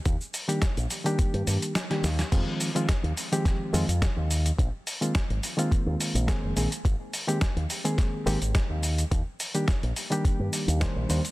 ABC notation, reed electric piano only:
X:1
M:4/4
L:1/16
Q:"Swing 16ths" 1/4=106
K:Fdor
V:1 name="Reed electric piano"
z3 [E,G,B,DG] z3 [E,G,B,DG]4- [E,G,B,DG] z [E,G,B,DG] z2 | [E,F,A,CF]3 [E,F,A,CF] z3 [E,F,A,CG]3 [E,F,A,CF] z4 z | z3 [E,A,B,CF] z3 [E,A,B,CF]4- [E,A,B,CF] [E,A,B,CA]2 [E,A,B,CA] z | z3 [E,A,B,CG] z3 [E,A,B,CA]3 [E,A,B,CG] z4 z |
z3 [E,G,B,DG] z3 [E,G,B,DG]4- [E,G,B,DG] [E,G,B,Dc]2 [E,G,B,Dc] z |]